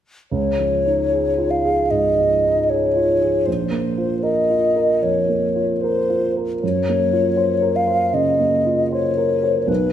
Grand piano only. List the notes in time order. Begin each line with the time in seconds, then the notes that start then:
0.32 C#2
0.59 F3
0.86 D#4
1.12 G#4
1.38 F4
1.65 G#4
1.91 G#2
2.17 F3
2.45 D#4
2.71 G#4
2.96 F4
3.22 G#4
3.47 A#1
3.71 A#3
3.98 F4
4.23 A#4
4.50 F4
4.76 A#4
5.02 F2
5.29 A#3
5.56 F4
5.84 A#4
6.10 F4
6.37 A#4
6.63 F#2
6.89 A#3
7.13 F4
7.37 C5
7.62 A#4
7.87 C5
8.13 C#3
8.39 A#3
8.66 F4
8.92 C5
9.17 A#4
9.43 C5
9.67 B1